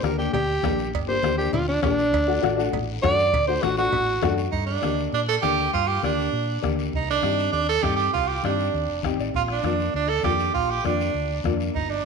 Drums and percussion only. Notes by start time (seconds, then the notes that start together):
0.04 bombo rim, high conga, short guiro
0.19 short guiro
0.34 cowbell, high conga, low conga, long guiro
0.63 bombo low, bombo rim, high conga, low timbale, short guiro
0.79 short guiro
0.93 bombo low, cowbell, high conga, long guiro
1.23 bombo rim, high conga, short guiro
1.40 short guiro
1.53 cowbell, high conga, low conga, long guiro
1.82 bombo low, bombo rim, high conga, low timbale, short guiro
1.99 short guiro
2.13 bombo low, cowbell, high conga, long guiro
2.43 bombo rim, high conga, short guiro
2.59 short guiro
2.73 cowbell, high conga, low conga, long guiro
3.03 bombo low, bombo rim, high conga, low timbale, short guiro
3.19 short guiro
3.33 bombo low, cowbell, high conga, low conga, long guiro
3.63 bombo rim, high conga, short guiro
3.77 short guiro
3.93 cowbell, high conga, low conga, long guiro
4.22 bombo low, bombo rim, high conga, low timbale, short guiro
4.38 short guiro
4.52 bombo low, high conga, long guiro
4.82 bombo rim, high conga, short guiro
4.98 short guiro
5.13 high conga, long guiro
5.43 bombo low, bombo rim, high conga, short guiro
5.59 short guiro
5.73 bombo low, high conga, long guiro
6.03 bombo rim, high conga, short guiro
6.19 short guiro
6.33 high conga, long guiro
6.63 bombo low, bombo rim, high conga, short guiro
6.79 short guiro
6.93 bombo low, high conga, long guiro
7.22 bombo rim, high conga, short guiro
7.39 short guiro
7.52 high conga, long guiro
7.83 bombo low, bombo rim, high conga, short guiro
7.99 short guiro
8.13 bombo low, high conga, long guiro
8.43 bombo rim, high conga, short guiro
8.59 short guiro
8.73 high conga, long guiro
9.03 bombo low, bombo rim, high conga, short guiro
9.20 short guiro
9.34 bombo low, high conga, long guiro
9.48 bombo rim
9.63 bombo rim, high conga, short guiro
9.79 short guiro
9.94 high conga, long guiro
10.23 bombo low, bombo rim, high conga, short guiro
10.39 short guiro
10.54 bombo low, high conga, long guiro
10.85 bombo rim, high conga, short guiro
11.01 short guiro
11.14 high conga, long guiro
11.44 bombo low, bombo rim, high conga, short guiro
11.60 short guiro
11.74 bombo low, high conga, long guiro